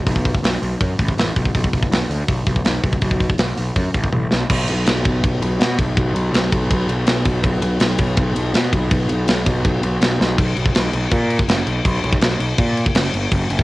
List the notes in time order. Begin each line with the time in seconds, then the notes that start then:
0.06 B1, kick, open hi-hat
0.16 kick
0.25 kick, open hi-hat
0.35 kick
0.43 B1, snare, open hi-hat
0.62 B1, open hi-hat
0.81 F#2, kick, open hi-hat
0.99 A1, kick, open hi-hat
1.09 kick
1.18 A1, snare, open hi-hat
1.36 B1, kick, open hi-hat
1.45 kick
1.55 B1, kick, open hi-hat
1.64 kick
1.73 B1, kick, open hi-hat
1.82 kick
1.91 B1, snare, open hi-hat
2.09 D2, open hi-hat
2.28 B1, kick, open hi-hat
2.47 B1, kick, open hi-hat
2.56 kick
2.65 B1, snare, open hi-hat
2.84 B1, kick, open hi-hat
2.93 kick
3.02 B1, kick, open hi-hat
3.11 kick
3.20 kick, open hi-hat
3.30 kick
3.38 B1, snare, open hi-hat
3.57 B1, open hi-hat
3.76 F#2, kick, open hi-hat
3.94 A1, kick, open hi-hat
4.04 kick
4.13 A1, high tom
4.32 B1, snare
4.50 B1, kick, crash
4.68 B1, ride
4.86 B1, snare, ride
5.05 B1, kick, ride
5.24 B1, kick, ride
5.42 B1, ride
5.59 B2, snare, ride
5.79 B1, kick, ride
5.97 B1, kick, ride
6.14 B1, ride
6.33 B1, snare, ride
6.52 B1, kick, ride
6.71 B1, kick, ride
6.89 B1, ride
7.07 B1, snare, ride
7.25 B1, kick, ride
7.44 B1, kick, ride
7.62 B1, ride
7.80 B1, snare, ride
7.99 B1, kick, ride
8.17 B1, kick, ride
8.35 B1, ride
8.54 B2, snare, ride
8.73 B1, kick, ride
8.91 B1, kick, ride
9.09 B1, ride
9.28 B1, snare, ride
9.46 B1, kick, ride
9.65 B1, kick, ride
9.83 B1, ride
10.01 B1, snare, ride
10.20 B1, snare
10.38 B1, kick, crash
10.56 B1, crash
10.66 kick
10.75 B1, snare, crash
10.93 B1, crash
11.11 A#2, kick, crash
11.30 crash
11.39 kick
11.48 F#1, snare, crash
11.67 B1, crash
11.85 B1, kick, crash
12.04 B1, crash
12.13 kick
12.21 B1, snare, crash
12.40 B1, crash
12.58 A#2, kick, crash
12.77 crash
12.86 kick
12.95 F#1, snare, crash
13.13 G1, crash
13.32 F#1, kick, crash
13.50 F#1, crash
13.59 kick